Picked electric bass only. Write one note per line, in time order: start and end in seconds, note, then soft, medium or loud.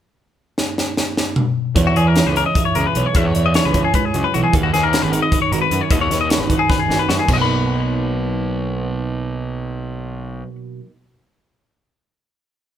1.75 1.92 E2 medium
1.96 2.20 E2 medium
2.26 2.42 C#2 medium
2.76 2.84 C#2 medium
2.96 3.04 B1 medium
3.15 3.31 E2 medium
3.35 3.59 E2 medium
3.65 3.81 C#2 medium
4.15 4.22 C#2 medium
4.35 4.43 B1 medium
4.54 4.69 D#2 medium
4.74 4.98 D#2 medium
5.03 5.19 G#1 medium
5.52 5.60 G#1 medium
5.71 5.79 F#2 medium
5.91 6.07 D#2 medium
6.11 6.35 D#2 medium
6.39 6.56 G#1 medium
6.89 6.97 G#1 medium
7.09 7.17 F#2 medium
7.28 10.42 B1 medium